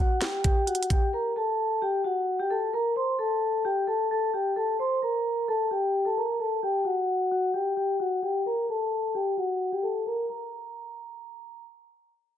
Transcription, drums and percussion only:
0.21 snare loud
0.21 closed hi-hat medium
0.44 kick medium
0.44 closed hi-hat medium
0.67 closed hi-hat soft
0.75 closed hi-hat medium
0.83 closed hi-hat medium
0.90 kick medium
0.90 closed hi-hat medium

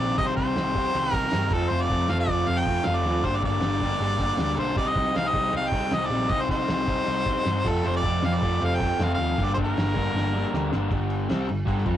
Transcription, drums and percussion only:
0.18 kick loud
0.18 crash medium
0.37 kick medium
0.37 crash medium
0.56 snare loud
0.56 crash medium
0.75 kick medium
0.75 snare soft
0.75 crash medium
0.94 crash medium
1.12 kick loud
1.12 crash medium
1.31 snare loud
1.31 crash medium
1.50 kick loud
1.50 crash medium
1.61 snare soft
1.70 crash medium
1.90 kick medium
1.90 crash medium
2.08 snare loud
2.08 crash loud
2.28 kick medium
2.28 snare soft
2.28 crash medium
2.47 crash medium
2.65 kick loud
2.65 crash medium
2.83 snare loud
2.83 crash medium
3.04 crash medium
3.24 kick loud
3.24 crash medium
3.42 kick medium
3.42 crash medium
3.61 snare loud
3.61 crash medium
3.80 kick medium
3.80 crash medium
3.98 crash medium
4.18 kick loud
4.18 crash medium
4.37 snare loud
4.37 crash medium
4.57 crash medium
4.68 snare soft
4.76 kick loud
4.76 crash medium
4.95 kick medium
4.95 crash medium
5.15 snare loud
5.15 crash medium
5.33 kick medium
5.33 snare soft
5.33 crash medium
5.53 crash medium
5.72 kick loud
5.72 crash medium
5.91 snare loud
5.91 crash medium
6.10 crash medium
6.30 kick loud
6.30 crash medium
6.48 kick medium
6.48 crash medium
6.68 snare loud
6.68 crash medium
6.88 kick medium
6.88 crash medium
7.07 crash medium
7.26 kick loud
7.26 crash medium
7.45 snare loud
7.45 crash medium
7.65 kick loud
7.65 crash loud
7.84 crash medium
8.03 kick medium
8.03 crash medium
8.22 snare loud
8.22 crash medium
8.42 kick medium
8.42 snare soft
8.42 crash medium
8.61 crash medium
8.80 kick loud
8.80 crash medium
8.99 snare loud
8.99 crash medium
9.19 crash medium
9.38 kick loud
9.38 crash medium
9.58 kick medium
9.58 crash medium
9.77 snare loud
9.77 crash medium
9.96 kick medium
9.96 crash medium
10.17 snare medium
10.54 snare loud
10.72 snare medium
10.91 kick loud
10.91 crash medium
11.10 crash medium
11.29 snare loud
11.29 crash medium
11.49 crash medium
11.67 kick medium
11.67 crash medium
11.78 snare soft
11.86 kick medium
11.86 crash medium

